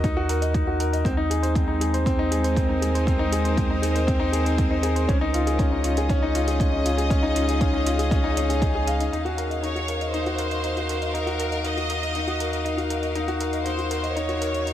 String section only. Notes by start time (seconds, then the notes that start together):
1.06 G#3
1.47 D#4
2.42 A#4
2.58 C5
5.09 C#4
5.49 D#5
5.60 G#4
6.86 F5
9.13 D#4
9.70 A#4
10.56 F#4